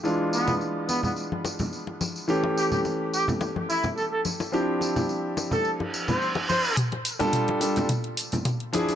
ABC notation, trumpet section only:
X:1
M:4/4
L:1/16
Q:"Swing 16ths" 1/4=107
K:F
V:1 name="Trumpet section"
z2 =B, z3 B, B, z8 | z2 G G z2 G z3 E z A A z2 | z6 z A z3 c z2 c2 | z16 |]